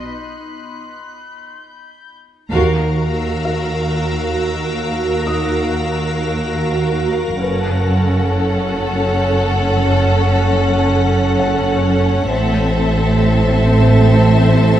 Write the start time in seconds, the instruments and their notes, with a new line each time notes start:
Already playing: violin section B5 C6 F#6
1.34 violin section G6
2.50 double bass section D#2, cello section D#2, ambient pad F#4 A#4 F5, viola section F#4, violin section A#4 F5 A#5
3.10 violin section E6
3.45 felt piano F5
5.27 felt piano D#4 D#6
7.41 double bass section F#1, cello section F#2, viola section C#4, violin section A4 F#5, ambient pad A4 C#5 F#5, felt piano B4
11.40 felt piano F#5
12.30 double bass section A1, cello section A2, viola section C4, violin section A4 E5, ambient pad A4 C5 E5
14.14 felt piano A5